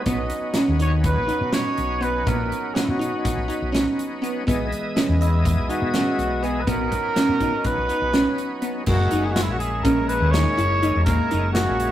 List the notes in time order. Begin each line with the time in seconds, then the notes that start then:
0.06 B1 F#3 B3 C#4 D#4 D#5, kick, closed hi-hat
0.30 closed hi-hat
0.54 C#4, snare, closed hi-hat
0.68 D#2
0.79 D#4 C#5, closed hi-hat
1.04 B4, kick, closed hi-hat
1.17 A#1
1.28 D#4, closed hi-hat
1.41 B2
1.52 C#4 C#5, snare, closed hi-hat
1.78 B1, closed hi-hat
2.01 B3 B4, closed hi-hat
2.27 A#1 B3 A#4, kick, closed hi-hat
2.52 closed hi-hat
2.75 C#4 F#4, snare, closed hi-hat
2.83 E4
2.89 B2 F#4
2.99 D#4, closed hi-hat
3.25 kick, snare, closed hi-hat
3.37 B1
3.48 D#4, closed hi-hat
3.62 B1
3.72 C#4, snare, closed hi-hat
3.99 closed hi-hat
4.22 B3, closed hi-hat
4.47 B1 E3 G#3 B3 D#5, kick, closed hi-hat
4.72 closed hi-hat
4.96 C#4, snare, closed hi-hat
5.08 E2
5.20 E4 D#5, closed hi-hat
5.45 kick, closed hi-hat
5.58 B1
5.69 D#4 F#4, closed hi-hat
5.82 B2
5.94 C#4, snare, closed hi-hat
6.19 B1, closed hi-hat
6.43 B3 G#4, closed hi-hat
6.61 B4
6.67 B1 F#3 B3 C#4 D#4 A#4, kick, closed hi-hat
6.92 kick, closed hi-hat
7.16 C#4, snare, closed hi-hat
7.29 B2
7.40 D#4, kick, closed hi-hat
7.64 B4, kick, closed hi-hat
7.78 B1
7.89 D#4, closed hi-hat
8.02 B1
8.14 C#4, snare, closed hi-hat
8.38 closed hi-hat
8.62 B3, closed hi-hat
8.86 F#1 G#3 A#3 C#4 E4 F#4, kick, crash
9.11 F#1 D#4, closed hi-hat
9.25 G#4
9.31 F#4
9.36 snare, closed hi-hat
9.42 E4
9.48 A#1 F#4
9.59 G#4, closed hi-hat
9.83 A#1 C#4 A#4, kick, closed hi-hat
10.08 B4, closed hi-hat
10.21 D#2
10.31 D#4 C#5, snare, closed hi-hat
10.57 F#1 E4, closed hi-hat
10.82 D#4, closed hi-hat
10.95 E1
11.04 A#3 A#4, kick, closed hi-hat
11.31 F#1 D#4, closed hi-hat
11.53 F#4, snare, closed hi-hat
11.69 A#1
11.80 closed hi-hat